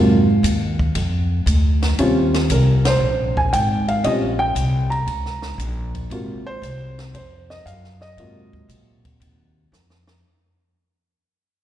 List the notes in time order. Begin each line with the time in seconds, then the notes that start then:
Already playing: G#2 C3 F#3 A#3 F4 F5
0.43 D#2, hi-hat pedal, ride
0.79 kick
0.95 F2, ride
1.46 D2, hi-hat pedal, ride
1.83 snare, ride
1.99 D#2 G3 C4 C#4 F4, ride
2.34 snare, ride
2.50 C2 A#4, hi-hat pedal, ride
2.85 C5, snare, ride
3.00 A#1
3.37 G#5, kick
3.53 G#1 G5, hi-hat pedal, ride
3.88 F5, ride
4.04 A#1 G3 C4 C#4 F4 D#5, ride
4.39 G5
4.55 C2, hi-hat pedal, ride
4.90 A#5, ride
5.07 C#2, ride
5.26 snare
5.42 snare
5.58 A#1, hi-hat pedal, ride
5.95 kick, ride
6.10 G#1 C3 A#3 F4 F#4, ride
6.47 C5
6.62 C2, hi-hat pedal, ride
6.99 snare, ride
7.14 F2 C5, ride
7.50 D#5, snare
7.65 F#2 F5, hi-hat pedal, ride
7.84 snare
8.01 D#5, snare
8.17 G#2 C3 F#3 A#3 F4, ride
8.53 kick
8.69 A#2, hi-hat pedal, ride
9.05 kick, ride
9.20 D#2, ride
9.72 F2, snare, hi-hat pedal
9.90 snare
10.07 snare